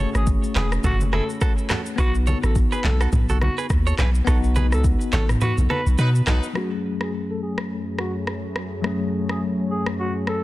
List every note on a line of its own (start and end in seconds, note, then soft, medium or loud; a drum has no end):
0.00 1.93 A3 medium
0.00 1.94 C#4 medium
0.00 1.95 F#4 medium
0.00 1.95 G#4 medium
0.00 1.96 C#5 medium
0.15 0.38 G#1 medium
0.15 0.26 G#4 medium
0.15 cross-stick medium
0.15 shaker medium
0.27 kick loud
0.27 shaker medium
0.44 shaker medium
0.56 0.79 E1 medium
0.56 0.70 G#4 medium
0.56 0.67 G#4 medium
0.56 0.66 B4 medium
0.56 clap medium
0.56 high conga medium
0.56 low conga medium
0.72 cross-stick loud
0.72 shaker medium
0.84 1.21 F#1 loud
0.84 0.95 F#4 medium
0.84 0.99 F#4 loud
0.84 0.95 A4 medium
0.84 kick loud
0.84 mid tom loud
0.84 low conga medium
0.84 shaker medium
1.00 high conga medium
1.00 shaker medium
1.13 1.24 E4 medium
1.13 1.23 G#4 medium
1.13 1.27 A4 medium
1.13 cross-stick loud
1.13 high conga medium
1.29 shaker soft
1.41 1.52 F#4 medium
1.41 1.52 A4 medium
1.41 kick loud
1.41 cross-stick loud
1.41 shaker medium
1.58 shaker medium
1.70 1.81 F#4 medium
1.70 1.80 A4 medium
1.70 cross-stick loud
1.70 clap loud
1.70 low conga medium
1.70 shaker medium
1.86 shaker medium
1.96 2.35 B1 loud
1.96 4.22 B3 medium
1.96 4.23 D#4 medium
1.96 2.09 F#4 medium
1.96 2.13 F#4 loud
1.96 2.09 B4 loud
1.96 kick loud
1.96 cross-stick loud
1.96 shaker medium
2.15 shaker soft
2.27 2.38 A4 medium
2.27 2.37 C#5 medium
2.27 high conga medium
2.27 shaker medium
2.43 2.67 A1 medium
2.43 2.54 A4 medium
2.43 cross-stick medium
2.43 shaker medium
2.55 kick medium
2.55 shaker medium
2.72 2.80 G#4 medium
2.72 2.80 B4 medium
2.72 2.83 B4 medium
2.72 shaker medium
2.84 3.07 B1 medium
2.84 2.99 A4 medium
2.84 clap medium
2.84 high conga medium
2.84 low conga medium
3.01 3.09 F#4 medium
3.01 3.08 A4 medium
3.01 cross-stick loud
3.01 shaker medium
3.12 3.49 B1 loud
3.12 kick loud
3.12 mid tom loud
3.12 low conga medium
3.12 shaker medium
3.29 3.38 F#4 medium
3.29 3.37 A4 medium
3.29 high conga medium
3.29 shaker medium
3.41 3.56 F#4 medium
3.41 cross-stick medium
3.41 high conga medium
3.58 3.66 G#4 medium
3.58 3.66 B4 medium
3.58 shaker soft
3.70 3.93 D#2 loud
3.70 kick loud
3.70 cross-stick loud
3.70 shaker medium
3.87 3.95 A4 medium
3.87 3.94 C#5 medium
3.87 shaker medium
3.98 4.22 B1 loud
3.98 4.10 G#4 medium
3.98 4.09 B4 medium
3.98 cross-stick medium
3.98 clap medium
3.98 low conga medium
3.98 shaker medium
4.15 shaker medium
4.25 4.74 B1 loud
4.25 6.50 B3 medium
4.25 6.52 D#4 medium
4.25 4.38 F#4 medium
4.25 4.37 A4 loud
4.25 kick loud
4.25 cross-stick loud
4.25 shaker medium
4.30 6.53 F#4 medium
4.44 shaker soft
4.56 4.67 G#4 medium
4.56 4.66 B4 medium
4.56 high conga medium
4.56 shaker medium
4.72 4.95 C#2 medium
4.72 4.83 A4 medium
4.72 cross-stick medium
4.72 shaker medium
4.84 kick loud
4.84 shaker medium
5.01 shaker medium
5.12 5.36 A1 medium
5.12 5.27 A4 medium
5.12 5.24 A4 medium
5.12 5.23 C#5 medium
5.12 clap medium
5.12 high conga medium
5.12 low conga medium
5.12 shaker medium
5.29 cross-stick medium
5.29 mid tom loud
5.29 shaker medium
5.41 5.52 F#4 medium
5.41 5.56 F#4 medium
5.41 5.52 B4 medium
5.41 mid tom loud
5.41 low conga medium
5.41 shaker medium
5.58 5.68 B1 medium
5.58 high conga medium
5.58 shaker medium
5.70 5.81 F#4 medium
5.70 5.80 A4 medium
5.70 5.85 B4 medium
5.70 cross-stick medium
5.70 high conga medium
5.86 5.96 B1 medium
5.86 shaker soft
5.98 6.22 B2 loud
5.98 6.09 F#3 loud
5.98 6.09 D#4 loud
5.98 6.09 F#4 medium
5.98 6.09 B4 loud
5.98 6.09 B4 medium
5.98 shaker medium
6.15 shaker medium
6.27 6.40 B1 medium
6.27 6.45 F#3 loud
6.27 6.45 D#4 loud
6.27 6.38 F#4 medium
6.27 6.37 A4 medium
6.27 6.45 B4 loud
6.27 cross-stick loud
6.27 clap loud
6.27 low conga medium
6.27 shaker medium
6.43 shaker medium
6.53 10.44 F#2 medium
6.53 8.79 F#3 medium
6.53 10.44 F#3 medium
6.53 8.80 A3 medium
6.53 10.44 A3 medium
6.53 8.81 C#4 medium
6.53 6.70 F#4 loud
6.53 10.44 G#4 medium
6.53 10.44 C#5 medium
6.53 cross-stick medium
6.58 8.81 G#4 medium
7.01 7.12 G#4 medium
7.01 cross-stick medium
7.30 7.40 A4 medium
7.43 7.56 G#4 medium
7.58 cross-stick medium
7.99 8.13 F#4 medium
7.99 cross-stick medium
8.27 cross-stick medium
8.56 cross-stick medium
8.82 10.44 F#3 medium
8.82 10.44 A3 medium
8.82 10.44 C#4 medium
8.82 cross-stick medium
8.87 10.44 G#4 medium
9.29 9.40 G#4 medium
9.29 cross-stick medium
9.71 9.85 G#4 medium
9.86 cross-stick medium
10.00 10.13 F#4 medium
10.27 10.42 A4 medium
10.27 cross-stick medium